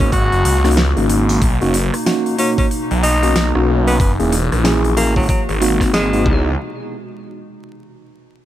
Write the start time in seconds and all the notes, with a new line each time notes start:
Already playing: G#1 C#3 A#3 F#4
0.00 kick, open hi-hat
0.12 F#4, kick, open hi-hat
0.32 F#1, open hi-hat
0.45 C#2, open hi-hat
0.65 A#3 C#4 D#4 F#4, cross-stick, snare, open hi-hat
0.71 open hi-hat
0.77 snare
0.97 G#1 A#3 C#4 D#4 F#4, open hi-hat
1.09 open hi-hat
1.29 open hi-hat
1.42 B1 B2 D#4, kick, open hi-hat
1.61 F#1 A#3 C#4 D#4 F#4, open hi-hat
1.74 open hi-hat
1.94 cross-stick, open hi-hat
2.06 A#3 C#4 D#4 F#4, snare, open hi-hat
2.26 open hi-hat
2.38 A#3 C#4 D#4 F#4, open hi-hat
2.58 C#4, kick, open hi-hat
2.71 open hi-hat
2.91 B1, open hi-hat
3.03 D#4, open hi-hat
3.23 A#3 C#4 D#4 F#4, open hi-hat
3.36 B1, snare, open hi-hat
3.55 B1 A#3 C#4 D#4 F#4, cross-stick
3.87 B3, open hi-hat
4.00 F#1 E3 B3 F#4, kick, open hi-hat
4.19 E1 A#3 C#4 E4 G#4, open hi-hat
4.32 open hi-hat
4.52 A#1, cross-stick, open hi-hat
4.64 A#3 C#4 E4 G#4, snare, open hi-hat
4.84 open hi-hat
4.97 A#3 C#4 E4 G#4, open hi-hat
5.05 A1
5.16 F#3, kick, open hi-hat
5.20 open hi-hat
5.23 open hi-hat
5.26 C3, kick, open hi-hat
5.29 F#3 G#3, open hi-hat
5.49 G#1, open hi-hat
5.61 A#3 C4 D#4 F#4, open hi-hat
5.81 kick, cross-stick, snare, open hi-hat
5.93 G#3 A#3 C4 D#4 G#4, snare, open hi-hat
6.13 A#3 C4 D#4 F#4, open hi-hat
6.25 C#2 B2 E3 B3 D#4 E4 G#4, kick